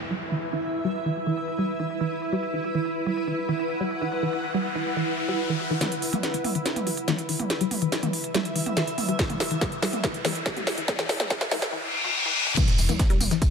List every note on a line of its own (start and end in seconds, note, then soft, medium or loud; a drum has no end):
0.00 11.73 E4 medium
0.00 11.73 B4 medium
0.00 3.14 E5 medium
0.00 downlifter medium
0.10 0.13 G3 medium
0.10 closed hi-hat medium
0.21 closed hi-hat medium
0.32 0.38 E3 medium
0.32 closed hi-hat medium
0.53 0.57 E3 medium
0.53 closed hi-hat loud
0.64 closed hi-hat medium
0.74 closed hi-hat medium
0.85 0.87 G3 medium
0.95 closed hi-hat loud
1.06 1.12 E3 medium
1.06 closed hi-hat medium
1.16 closed hi-hat medium
1.27 1.31 E3 medium
1.37 closed hi-hat medium
1.48 closed hi-hat medium
1.58 1.61 G3 medium
1.58 closed hi-hat medium
1.80 1.86 E3 medium
1.80 closed hi-hat medium
1.90 closed hi-hat medium
2.01 2.05 E3 medium
2.01 closed hi-hat medium
2.22 closed hi-hat medium
2.33 2.35 G3 medium
2.33 closed hi-hat medium
2.43 closed hi-hat medium
2.43 riser medium
2.54 2.60 E3 medium
2.64 closed hi-hat medium
2.75 2.79 E3 medium
2.75 closed hi-hat medium
2.85 closed hi-hat medium
3.01 6.44 F#5 medium
3.06 3.09 G3 medium
3.06 closed hi-hat medium
3.17 closed hi-hat medium
3.27 3.34 E3 medium
3.27 closed hi-hat medium
3.49 3.53 E3 medium
3.49 closed hi-hat medium
3.59 closed hi-hat medium
3.70 closed hi-hat medium
3.80 3.83 G3 medium
3.91 closed hi-hat medium
4.02 4.08 E3 medium
4.02 closed hi-hat medium
4.12 closed hi-hat medium
4.23 4.27 E3 medium
4.33 closed hi-hat medium
4.44 closed hi-hat medium
4.54 4.57 G3 medium
4.54 closed hi-hat medium
4.75 4.82 E3 medium
4.75 closed hi-hat medium
4.86 closed hi-hat medium
4.96 5.01 E3 medium
4.96 closed hi-hat medium
5.18 closed hi-hat medium
5.28 5.31 G3 medium
5.28 closed hi-hat medium
5.39 closed hi-hat medium
5.49 5.56 E3 medium
5.60 closed hi-hat medium
5.71 5.75 E3 medium
5.71 closed hi-hat medium
5.81 5.85 E3 medium
5.81 snare medium
5.81 closed hi-hat medium
5.81 mid tom medium
5.81 riser medium
5.92 closed hi-hat medium
6.02 open hi-hat loud
6.13 6.15 G3 medium
6.13 closed hi-hat medium
6.13 mid tom medium
6.23 snare soft
6.23 closed hi-hat medium
6.34 6.40 E3 medium
6.34 closed hi-hat medium
6.44 mid tom medium
6.44 open hi-hat medium
6.55 6.59 E3 medium
6.55 closed hi-hat medium
6.66 snare medium
6.66 closed hi-hat medium
6.76 closed hi-hat medium
6.76 mid tom medium
6.87 6.89 G3 medium
6.87 open hi-hat loud
6.97 closed hi-hat medium
7.08 7.14 E3 medium
7.08 snare medium
7.08 closed hi-hat medium
7.08 mid tom medium
7.18 closed hi-hat soft
7.29 7.33 E3 medium
7.29 open hi-hat medium
7.37 11.73 E5 medium
7.37 closed hi-hat medium
7.37 mid tom medium
7.50 snare medium
7.50 closed hi-hat medium
7.61 7.63 G3 medium
7.61 closed hi-hat medium
7.71 mid tom medium
7.71 open hi-hat loud
7.82 7.88 E3 medium
7.82 closed hi-hat medium
7.92 snare medium
7.92 closed hi-hat medium
8.03 8.07 E3 medium
8.03 closed hi-hat medium
8.03 mid tom medium
8.13 open hi-hat loud
8.24 closed hi-hat medium
8.34 8.37 G3 medium
8.34 snare medium
8.34 closed hi-hat medium
8.34 mid tom medium
8.45 closed hi-hat medium
8.55 8.62 E3 medium
8.55 open hi-hat loud
8.66 closed hi-hat medium
8.66 mid tom medium
8.77 8.81 E3 medium
8.77 snare medium
8.77 closed hi-hat medium
8.87 closed hi-hat medium
8.98 mid tom medium
8.98 open hi-hat medium
9.08 9.11 G3 medium
9.08 closed hi-hat medium
9.19 kick loud
9.19 snare medium
9.19 closed hi-hat medium
9.30 9.36 E3 medium
9.30 closed hi-hat medium
9.30 mid tom medium
9.40 snare medium
9.40 open hi-hat loud
9.51 9.55 E3 medium
9.51 closed hi-hat medium
9.61 kick loud
9.61 snare medium
9.61 closed hi-hat medium
9.61 mid tom medium
9.72 closed hi-hat medium
9.82 9.85 G3 medium
9.82 snare medium
9.82 open hi-hat loud
9.93 closed hi-hat medium
9.93 mid tom medium
10.04 10.10 E3 medium
10.04 kick loud
10.04 snare medium
10.04 closed hi-hat medium
10.14 closed hi-hat medium
10.25 10.29 E3 medium
10.25 snare medium
10.25 mid tom medium
10.25 open hi-hat loud
10.35 closed hi-hat medium
10.46 kick loud
10.46 snare medium
10.46 closed hi-hat medium
10.57 10.59 G3 medium
10.57 closed hi-hat medium
10.57 mid tom medium
10.67 snare medium
10.67 open hi-hat loud
10.78 10.84 E3 medium
10.78 closed hi-hat medium
10.88 kick loud
10.88 snare medium
10.88 closed hi-hat medium
10.88 mid tom medium
10.99 11.03 E3 medium
10.99 snare medium
10.99 closed hi-hat medium
11.09 snare loud
11.09 open hi-hat loud
11.20 snare medium
11.20 closed hi-hat medium
11.20 mid tom medium
11.30 11.33 G3 medium
11.30 kick loud
11.30 snare medium
11.30 closed hi-hat medium
11.41 snare medium
11.41 closed hi-hat medium
11.51 11.58 E3 medium
11.51 snare loud
11.51 mid tom medium
11.51 open hi-hat loud
11.62 snare medium
11.62 closed hi-hat medium
11.73 11.77 E3 medium
11.73 reverse cymbal medium
12.04 12.08 F#3 medium
12.25 12.32 E3 loud
12.47 12.51 E3 medium
12.57 12.60 E3 medium
12.57 kick loud
12.57 closed hi-hat medium
12.57 mid tom medium
12.57 ride medium
12.57 tambourine soft
12.57 crash loud
12.57 sub drop medium
12.68 12.78 E1 medium
12.68 snare soft
12.68 closed hi-hat medium
12.78 12.89 E1 loud
12.78 closed hi-hat medium
12.78 open hi-hat loud
12.78 tambourine medium
12.89 12.93 E3 medium
12.89 closed hi-hat medium
12.89 mid tom medium
12.89 tambourine soft
12.99 kick loud
12.99 snare loud
12.99 closed hi-hat medium
12.99 ride medium
12.99 tambourine soft
13.10 13.20 E1 medium
13.10 13.14 G3 loud
13.10 closed hi-hat medium
13.10 closed hi-hat soft
13.21 13.31 E1 loud
13.21 closed hi-hat medium
13.21 mid tom medium
13.21 open hi-hat loud
13.21 tambourine medium
13.31 13.34 E3 medium
13.31 snare medium
13.31 closed hi-hat medium
13.31 tambourine soft
13.42 kick loud
13.42 closed hi-hat medium
13.42 ride medium
13.42 tambourine soft